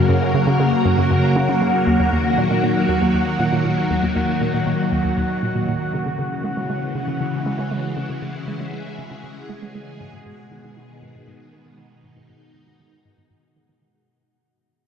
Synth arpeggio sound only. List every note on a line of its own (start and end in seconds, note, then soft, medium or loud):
0.09 0.13 F#2 medium
0.34 0.42 C#3 medium
0.47 0.58 C#3 medium
0.60 0.67 C#3 medium
0.85 0.93 F#2 medium
0.98 1.02 F#2 medium
1.11 1.15 F#2 medium
1.36 1.43 C#3 medium
1.49 1.60 C#3 medium
1.62 1.69 C#3 medium
1.87 1.94 D#2 medium
2.00 2.04 D#2 medium
2.13 2.17 D#2 medium
2.38 2.45 A#2 medium
2.51 2.62 A#2 medium
2.63 2.71 A#2 medium
2.89 2.96 D#2 medium
3.01 3.06 D#2 medium
3.14 3.19 D#2 medium
3.40 3.47 A#2 medium
3.52 3.63 A#2 medium
3.65 3.72 A#2 medium
3.90 3.98 D#2 medium
4.03 4.07 D#2 medium
4.16 4.20 D#2 medium
4.41 4.49 A#2 medium
4.54 4.65 A#2 medium
4.67 4.74 A#2 medium
4.92 4.99 D#2 medium
5.05 5.09 D#2 medium
5.18 5.22 D#2 medium
5.43 5.50 A#2 medium
5.56 5.67 A#2 medium
5.68 5.76 A#2 medium
5.94 6.01 C#3 medium
6.06 6.11 C#3 medium
6.19 6.23 C#3 medium
6.44 6.52 G#3 medium
6.57 6.68 G#3 medium
6.70 6.77 G#3 medium
6.95 7.03 C#3 medium
7.08 7.12 C#3 medium
7.21 7.25 C#3 medium
7.46 7.54 G#3 medium
7.59 7.70 G#3 medium
7.71 7.79 G#3 medium
7.97 8.04 C#3 medium
8.10 8.14 C#3 medium
8.22 8.27 C#3 medium
8.48 8.55 G#3 medium
8.61 8.72 G#3 medium
8.73 8.81 G#3 medium
8.99 9.06 C#3 medium
9.11 9.16 C#3 medium
9.24 9.28 C#3 medium
9.49 9.57 G#3 medium
9.62 9.73 G#3 medium
9.75 9.82 G#3 medium
10.00 10.08 G#2 medium
10.13 10.18 G#2 medium
10.26 10.30 G#2 medium
10.52 10.59 D#3 medium
10.64 10.75 D#3 medium
10.77 10.84 D#3 medium
11.02 11.10 G#2 medium
11.15 11.19 G#2 medium
11.28 11.32 G#2 medium
11.53 11.60 D#3 medium
11.66 11.77 D#3 medium
11.78 11.86 D#3 medium
12.04 12.11 G#2 medium
12.16 12.21 G#2 medium
12.29 12.34 G#2 medium
12.55 12.62 D#3 medium
12.67 12.78 D#3 medium
12.80 12.87 D#3 medium
13.05 13.13 G#2 medium
13.18 13.22 G#2 medium
13.31 13.35 G#2 medium
13.56 13.64 D#3 medium
13.69 13.80 D#3 medium
13.82 13.89 D#3 medium